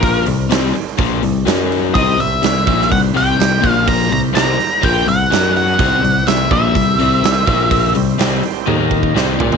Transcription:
Already playing: A#1 A#2 F3 A#3 A#4
0.02 kick, open hi-hat
0.26 C2 C3 G3, open hi-hat
0.50 C2 C3 G3 C4, snare, open hi-hat
0.75 muted overdriven electric guitar stroke, open hi-hat
0.98 A#1 A#2 F3 A#3, kick, open hi-hat
1.22 C2 C3 G3, open hi-hat
1.45 F#2 F#3 C#4 F#4, snare, open hi-hat
1.72 open hi-hat
1.94 C2 C3 G3 C4 E4 G4 C5 D#5 E5, kick, open hi-hat
2.18 C2 C3 G3 E5, open hi-hat
2.42 C2 C3 G3, snare, open hi-hat
2.67 A#1 A#2 F3 A#3, kick, open hi-hat
2.82 snare
2.90 C2 C3 G3 F#5, kick, open hi-hat
3.14 C2 C3 G3 C4 G5, open hi-hat
3.38 C2 C3 G3, snare, open hi-hat
3.61 A#1 A#2 F3 A#3 F4 A#4 F5, kick, open hi-hat
3.71 F5
3.88 A#5, kick, open hi-hat
4.09 C2 C3 G3 E4 G4 C5 E5 A#5, open hi-hat
4.33 C2 C3 G3 C4 A#5, snare, open hi-hat
4.58 muted overdriven electric guitar stroke, muted picked electric bass stroke, open hi-hat
4.81 A#1 A#2 F3 A#3 G5, kick, open hi-hat
5.06 C2 C3 G3 F#5, open hi-hat
5.30 F#2 F#3 C#4 F#4 C#5 F#5, snare, open hi-hat
5.56 F#5, open hi-hat
5.78 C2 C3 G3 C4 F4 G#4 C#5 F5, kick, open hi-hat
5.97 E4 G4 C5 E5
6.02 C2 C3 G3, open hi-hat
6.27 C2 C3 G3 E5, snare, open hi-hat
6.51 A#1 A#2 F3 A#3 E5, kick, open hi-hat
6.75 C2 C3 G3, kick, open hi-hat
6.99 C2 C3 G3 C4, open hi-hat
7.23 C2 C3 G3, snare, open hi-hat
7.46 A#1 A#2 F3 A#3 F4 A#4, kick, open hi-hat
7.71 kick, open hi-hat
7.94 C2 C3 G3 C4 E4 G4 C5, open hi-hat
8.19 C2 C3 G3 C4, snare, open hi-hat
8.43 muted overdriven electric guitar stroke, open hi-hat
8.67 D#2 D#3 A#3 D#4 A#4 D#5, high tom
8.91 kick
9.03 kick
9.15 C2 C3 G3 C4 E4 G4 C5, snare
9.39 A#2 A#3 F4 A#4, floor tom
9.52 floor tom

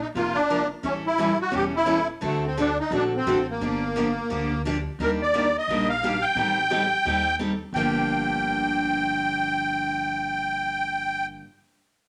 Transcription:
0.01 D#4
0.15 F1 C3 F3 A#3 F4 A#4
0.35 D4
0.50 C3 F3 A#3 F4 A#4
0.83 A1 E3 G3 C#4 E4 A4
1.06 E4
1.18 E3 G3 C#4 E4 A4
1.41 F#4
1.51 E1 E3 G3 C#4 E4 A4
1.55 G4
1.76 E4
1.86 E3 G3 C#4 E4 A4
2.21 D2 D3 A3 C4 F#4 A4
2.25 A3
2.46 C4
2.57 D3 A3 C4 D4 F#4 A4
2.80 D#4
2.91 A#1 D3 A3 C4 F#4 A4
2.95 D4
3.16 C4
3.26 A1 D3 A3 C4 F#4 A4
3.51 A#3
3.61 G1 D3 F3 A#3 D4 G4
3.96 D3 F3 A#3 D4 G4
4.30 D2 D3 F3 A#3 D4 G4
4.65 D3 F3 A#3 D4 G4
4.99 D#2 D#3 G3 A#3 D4 G4 A#4
5.22 D5
5.34 D#3 G3 A#3 D4 G4
5.58 D#5
5.68 A#1 D#3 G3 A#3 D4 G4
5.89 F5
6.03 D#3 G3 A#3 D4 G4
6.22 G5
6.35 A1 D#3 G3 C4 G4 A4
6.70 D#3 G3 C4 G4 A4
7.05 D#2 D#3 G3 C4 G4 A4
7.39 D#3 G3 C4 G4 A4
7.73 G1 G2 D3 F3 G5
7.77 A#3 D4 G4

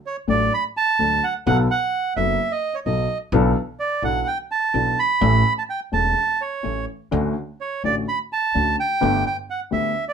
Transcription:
0.06 C#5
0.27 A1 A2 F#3 A3 D4 A4 D5
0.54 B5
0.77 A5
0.99 D2 D3 F#3 A3 D4 A4
1.24 F#5
1.46 B1 B2 F#3 B3 D#4 A4 F#5
1.71 F#5
2.16 F#1 F#2 F#3 B3 D#4 A4 E5
2.52 D#5
2.74 C#5
2.86 B1 B2 F#3 B3 D#4 A4 D#5
3.32 B1 B2 E3 B3 D4 A4
3.79 D5
4.02 B1 B2 E3 B3 D4 A4 F#5
4.27 G5
4.51 A5
4.74 B1 B2 E3 B3 D4 A4
4.99 B5
5.21 A1 A2 E3 A3 C#4 A4
5.58 A5
5.70 G5
5.92 E1 E2 E3 A3 C#4 A4 A5
6.41 C#5
6.63 A1 A2 E3 A3 C#4 A4
7.11 D2 D3 A3 C#4 F#4
7.61 C#5
7.84 A1 A2 D3 A3 C#4 F#4 D5
8.08 B5
8.33 A5
8.54 D2 D3 A3 C#4 F#4
8.80 G5
9.01 G1 G2 D3 A3 B3 G4
9.26 G5
9.50 F#5
9.71 D2 D3 A3 B3 G4 E5
10.08 D5

